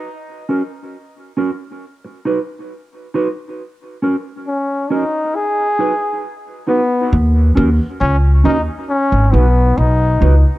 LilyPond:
<<
  \new Staff \with { instrumentName = "Clean electric guitar" } { \time 4/4 \key gis \minor \tempo 4 = 68 r8 <cis' fis' ais'>8 r8 <cis' fis' ais'>8 r8 <dis' fis' b'>8 r8 <dis' fis' b'>8 | r8 <cis' fis' ais'>8 r8 <cis' fis' ais'>8 r8 <dis' fis' b'>8 r8 <dis' fis' b'>8 | r8 <cis' fis' ais'>8 r8 <cis' fis' ais'>8 r8 <dis' fis' b'>8 r8 <dis' fis' b'>8 | }
  \new Staff \with { instrumentName = "Trombone" } { \time 4/4 \key gis \minor r1 | r4 cis'8 dis'8 gis'4 r8 b8 | r4 cis'8 dis'8 cis'8 b8 dis'8. r16 | }
  \new Staff \with { instrumentName = "Upright bass" } { \clef bass \time 4/4 \key gis \minor r1 | r1 | dis,8 dis,16 r16 cis,8 dis,16 r8 gis,,16 b,,8 b,,8 cis,16 r16 | }
>>